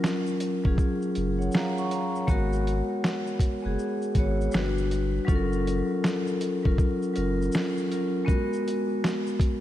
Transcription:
0.00 0.13 F#3 loud
0.00 0.14 C#4 medium
0.00 0.15 F4 loud
0.00 0.15 A#4 loud
0.00 finger snap medium
0.04 snare loud
0.04 shaker medium
0.27 shaker soft
0.40 closed hi-hat medium
0.40 shaker medium
0.64 0.77 F1 medium
0.64 1.00 F#3 medium
0.64 1.01 C#4 medium
0.64 1.01 F4 medium
0.64 1.02 G#4 medium
0.64 kick medium
0.78 kick loud
0.78 shaker medium
1.02 shaker soft
1.15 1.49 F#1 loud
1.15 closed hi-hat medium
1.15 shaker soft
1.38 1.52 C#5 medium
1.38 1.52 F#5 medium
1.38 shaker medium
1.52 1.77 F5 medium
1.52 1.76 A#5 medium
1.52 finger snap medium
1.52 snare loud
1.52 shaker medium
1.78 1.91 F#5 medium
1.78 1.91 C#6 medium
1.78 shaker medium
1.91 2.14 F5 medium
1.91 2.14 A#5 medium
1.91 closed hi-hat medium
1.91 shaker soft
2.14 2.50 C#5 medium
2.14 2.50 F#5 medium
2.14 shaker soft
2.27 2.82 G#1 loud
2.27 3.15 G#3 loud
2.27 3.16 B3 loud
2.27 3.16 F#4 loud
2.27 3.17 A#4 loud
2.27 kick loud
2.27 shaker medium
2.53 shaker soft
2.67 closed hi-hat medium
2.67 shaker soft
3.04 finger snap medium
3.04 snare loud
3.04 shaker medium
3.27 shaker soft
3.39 kick medium
3.39 closed hi-hat medium
3.39 shaker soft
3.62 3.77 F#1 medium
3.62 3.99 G#3 medium
3.62 4.00 B3 medium
3.62 4.01 F#4 medium
3.62 4.01 G#4 medium
3.79 shaker medium
4.02 shaker soft
4.15 4.48 G#1 medium
4.15 4.53 G#3 medium
4.15 4.54 B3 medium
4.15 4.53 F#4 medium
4.15 kick medium
4.15 closed hi-hat medium
4.15 shaker soft
4.19 4.55 C#5 medium
4.41 shaker soft
4.52 5.19 G1 loud
4.52 5.16 G3 medium
4.52 5.17 D4 medium
4.52 5.18 F#4 medium
4.52 finger snap medium
4.52 snare loud
4.52 shaker medium
4.56 5.18 B4 medium
4.78 shaker medium
4.91 closed hi-hat medium
4.91 shaker soft
5.25 5.82 F#1 loud
5.25 6.14 F#3 loud
5.25 6.15 C#4 loud
5.25 6.15 F4 loud
5.25 kick loud
5.25 shaker medium
5.29 5.37 A4 loud
5.36 6.19 A#4 loud
5.53 shaker soft
5.67 closed hi-hat medium
5.67 shaker soft
6.04 finger snap medium
6.04 snare loud
6.04 shaker medium
6.27 shaker soft
6.41 closed hi-hat medium
6.41 shaker medium
6.63 6.77 F1 medium
6.63 7.00 F#3 medium
6.63 7.00 C#4 medium
6.63 7.01 F4 medium
6.63 7.02 A#4 medium
6.63 kick medium
6.78 kick loud
6.78 shaker medium
7.02 shaker soft
7.14 7.49 F#1 medium
7.14 7.66 F#3 medium
7.14 7.67 C#4 medium
7.14 7.67 F4 medium
7.14 7.68 A#4 medium
7.14 closed hi-hat medium
7.14 shaker soft
7.42 shaker soft
7.52 finger snap medium
7.52 snare loud
7.52 shaker medium
7.78 shaker medium
7.89 8.18 F#3 medium
7.89 8.18 C#4 medium
7.89 8.19 F4 medium
7.89 8.20 A#4 medium
7.89 closed hi-hat medium
7.89 shaker soft
8.25 9.14 G#3 loud
8.25 9.14 B3 loud
8.25 9.15 F#4 loud
8.25 9.16 A#4 loud
8.25 kick loud
8.29 shaker medium
8.53 shaker medium
8.68 closed hi-hat medium
8.68 shaker soft
9.04 finger snap medium
9.04 snare loud
9.04 shaker medium
9.27 shaker soft
9.40 kick medium
9.40 closed hi-hat medium
9.40 shaker medium

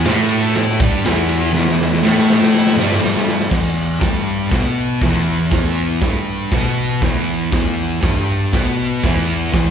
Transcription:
0.05 0.80 A2 loud
0.05 0.80 A3 loud
0.05 snare loud
0.05 ride loud
0.29 ride medium
0.55 snare loud
0.55 ride loud
0.80 1.04 G2 medium
0.80 1.04 G3 loud
0.80 kick loud
0.80 ride medium
1.05 1.52 E2 medium
1.05 1.53 E3 loud
1.05 snare loud
1.05 ride loud
1.29 ride medium
1.53 2.02 E2 loud
1.53 2.03 E3 loud
1.53 snare medium
1.68 snare medium
1.81 snare medium
1.93 snare medium
2.03 2.77 A2 medium
2.03 2.77 A3 loud
2.03 snare medium
2.18 snare medium
2.30 snare medium
2.42 snare medium
2.55 snare medium
2.67 snare medium
2.76 3.00 G2 loud
2.76 3.01 G3 loud
2.76 snare medium
2.92 snare medium
3.01 3.50 G2 medium
3.01 3.51 G3 loud
3.01 snare loud
3.16 snare medium
3.28 snare loud
3.40 snare loud
3.50 4.00 E2 medium
3.50 4.01 E3 loud
3.50 kick loud
3.50 snare loud
3.50 crash loud
4.00 4.51 G2 medium
4.00 4.51 G3 medium
4.00 kick loud
4.00 snare loud
4.00 open hi-hat medium
4.50 5.01 B2 medium
4.50 5.01 B3 medium
4.50 kick loud
4.50 snare loud
4.50 open hi-hat medium
5.02 5.50 E2 medium
5.02 5.52 E3 medium
5.02 kick loud
5.02 snare loud
5.02 open hi-hat medium
5.51 6.01 E2 medium
5.51 6.02 E3 medium
5.51 kick loud
5.51 snare loud
5.51 open hi-hat medium
6.01 6.52 G2 medium
6.01 6.52 G3 loud
6.01 kick loud
6.01 snare loud
6.01 open hi-hat medium
6.51 7.02 B2 medium
6.51 7.03 B3 medium
6.51 kick loud
6.51 snare loud
6.51 open hi-hat medium
7.02 7.51 E2 medium
7.02 7.51 E3 medium
7.02 kick loud
7.02 snare loud
7.02 open hi-hat medium
7.52 8.01 E2 medium
7.52 8.02 E3 loud
7.52 kick loud
7.52 snare loud
7.52 open hi-hat medium
8.01 8.52 G2 medium
8.01 8.52 G3 medium
8.01 kick loud
8.01 snare loud
8.01 open hi-hat medium
8.52 9.02 B2 medium
8.52 9.03 B3 medium
8.52 kick loud
8.52 snare loud
8.52 open hi-hat medium
9.04 9.51 E2 medium
9.04 9.52 E3 medium
9.04 kick loud
9.04 snare loud
9.04 open hi-hat medium
9.52 9.70 E2 medium
9.52 9.70 E3 loud
9.52 kick loud
9.52 snare loud
9.52 open hi-hat medium

